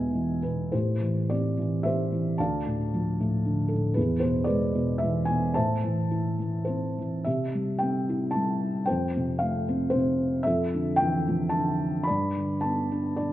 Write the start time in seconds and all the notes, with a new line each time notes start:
Already playing: E2 B2 G#3 G#4 B4 E5 G#5
0.15 E3
0.43 B2 B4
0.72 A2 E4 G4 C5
1.00 E3
1.30 C4 G4 D5
1.59 E3
1.83 C4 G4 C5 E5
2.12 E3
2.38 D2 D5 F5 A5
2.67 A2
2.94 F3
3.20 A2
3.46 D3
3.68 A4
3.73 A2
3.94 E2 E4 G#4 B4
4.20 B2 C5
4.44 G#4 B4 D5
4.49 G#3
4.75 B2
4.98 E5
5.04 E3
5.25 G#5
5.30 B2
5.54 A2 C5 E5 A5
5.84 E3
6.11 E4
6.39 E3
6.65 C4 C5
6.98 E3
7.24 C3 G4 E5
7.54 G3
7.79 G5
7.83 C4
8.09 E4
8.31 A5
8.36 G3
8.86 C5 G5
8.90 F2
9.17 C3
9.39 A3 F5
9.69 C4
9.90 C5
9.95 C3
10.43 F2 A4 E5
10.74 D3
10.96 G5
11.01 E3
11.28 F3
11.49 A5
11.56 D3
12.04 D5 B5
12.10 G2
12.36 D3
12.61 B3 A5
12.92 D4
13.16 D3 D5